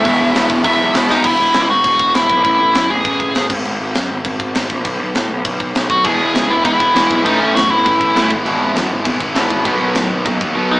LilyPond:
<<
  \new Staff \with { instrumentName = "Lead electric guitar" } { \time 4/4 \key e \major \tempo 4 = 200 e''2 e''4 r8 dis'8 | e'4. fis'4. e'4 | e'4. gis'2 r8 | r1 |
r2. r8 fis'8 | gis'4. e'8 e'2 | dis'8 cis'8 fis'8 e'2 r8 | r1 |
r2. r8 dis'8 | }
  \new Staff \with { instrumentName = "Distorted electric guitar" } { \clef bass \time 4/4 \key e \major <e gis b e'>2.~ <e gis b e'>8 <e gis b e'>8 | r1 | r1 | r1 |
r1 | <e gis b e'>2~ <e gis b e'>8 <e gis b e'>8 <e gis b e'>4 | <a, e a cis' e'>2~ <a, e a cis' e'>8 <a, e a cis' e'>8 <a, e a cis' e'>8 <gis, e gis b e'>8~ | <gis, e gis b e'>2 <gis, e gis b e'>8 <gis, e gis b e'>4 r8 |
<b, dis fis b dis'>2~ <b, dis fis b dis'>8 <b, dis fis b dis'>8 <b, dis fis b dis'>4 | }
  \new Staff \with { instrumentName = "Distorted electric guitar" } { \clef bass \time 4/4 \key e \major <e, b, e>4 <e, b, e>4 <e, b, e>4 <e, b, e>4 | r1 | r1 | r1 |
r1 | <e, b, e>4 <e, b,>8 r8 <e, b,>8 r8 <e, b, e>4 | <a, e a>4 <a, e>8 r8 <a, e>8 r8 <a, e a>8 r8 | <e, b, e>4 <e, b,>8 r8 <e, b,>8 r8 <e, b, e>4 |
<b, fis b>4 <b, fis>8 r8 <b, fis>8 r8 <b, fis b>4 | }
  \new Staff \with { instrumentName = "Overdriven electric guitar" } { \clef bass \time 4/4 \key e \major <e, b, e>4 <e, b, e>4 <e, b, e>4 <e, b, e>4 | r1 | r1 | r1 |
r1 | <e, b, e>4 <e, b,>8 r8 <e, b,>8 r8 <e, b, e>4 | <a, e a>4 <a, e>8 r8 <a, e>8 r8 <a, e a>8 r8 | <e, b, e>4 <e, b,>8 r8 <e, b,>8 r8 <e, b, e>4 |
<b, fis b>4 <b, fis>8 r8 <b, fis>8 r8 <b, fis b>4 | }
  \new Staff \with { instrumentName = "Picked electric bass" } { \clef bass \time 4/4 \key e \major e,,8 e,,8 e,,8 e,,8 e,,8 b,,8 e,,8 e,,8 | e,,8 e,,8 cis,8 e,,8 e,,4 e,,8 b,,8 | a,,8 a,,8 fis,8 a,,8 a,,4 a,,8 gis,,8 | gis,,8 gis,,8 fis,8 gis,,8 gis,,4 gis,,8 ais,,8 |
b,,8 b,,8 a,8 b,,8 b,,4 b,,8 b,,8 | e,,8 e,,8 cis,8 e,,8 e,,4 e,,8 b,,8 | a,,8 a,,8 fis,8 a,,8 a,,4 g,,8 gis,,8 | gis,,8 gis,,8 fis,8 gis,,8 gis,,4 gis,,8 gis,,8 |
b,,8 b,,8 a,8 b,,8 dis,4 r4 | }
  \new DrumStaff \with { instrumentName = "Drums" } \drummode { \time 4/4 <hho bd>4 <hho sn>8 bd8 <hho bd>4 <hho sn>8 sn8 | <cymc bd>4 <cymc sn>4 <cymc bd>8 bd8 <cymc sn>8 bd8 | <cymc bd>4 <cymc sn>4 <cymc bd>8 bd8 <cymc sn>8 <cymc bd>8 | cymc4 <cymc sn>4 <cymc bd>8 bd8 <cymc sn>8 bd8 |
<cymc bd>4 <cymc sn>4 <cymc bd>8 bd8 <cymc sn>8 bd8 | <cymc bd>4 <cymc sn>4 <cymc bd>8 bd8 <cymc sn>8 bd8 | <cymc bd>4 <cymc sn>4 <cymc bd>8 bd8 <cymc sn>8 bd8 | cymc4 <cymc sn>4 <cymc bd>8 bd8 <cymc sn>8 bd8 |
<cymc bd>4 <cymc sn>4 <cymc bd>8 bd8 r4 | }
>>